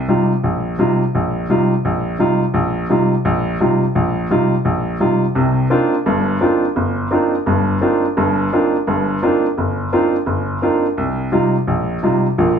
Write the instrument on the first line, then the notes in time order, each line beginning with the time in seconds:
upright piano
0.08 C3 G3 D#4 F4
0.44 A#1
0.79 C3 G3 D#4 F4
1.15 A#1
1.50 C3 G3 D#4 F4
1.85 A#1
2.19 C3 G3 D#4 F4
2.54 A#1
2.90 C3 G3 D#4 F4
3.25 A#1
3.60 C3 G3 D#4 F4
3.95 A#1
4.30 C3 G3 D#4 F4
4.65 A#1
5.00 C3 G3 D#4 F4
5.35 C2 C3
5.70 A#3 C4 D4 D#4 F4
6.06 G1 G2
6.40 A#3 C4 D4 D#4 F4
6.76 G1
7.11 A#3 C4 D4 D#4 F4
7.46 G1 G2
7.81 A#3 C4 D4 D#4 F4
8.17 G1 G2
8.53 A#3 C4 D4 D#4 F4
8.87 G1 G2
9.22 A#3 C4 D4 D#4 F4
9.58 G1
9.92 A#3 C4 D4 D#4 F4
10.26 G1
10.62 A#3 C4 D4 D#4 F4
10.98 C2
11.32 C3 G3 D#4 F4
11.67 A#1
12.03 C3 G3 D#4 F4
12.38 A#1 A#2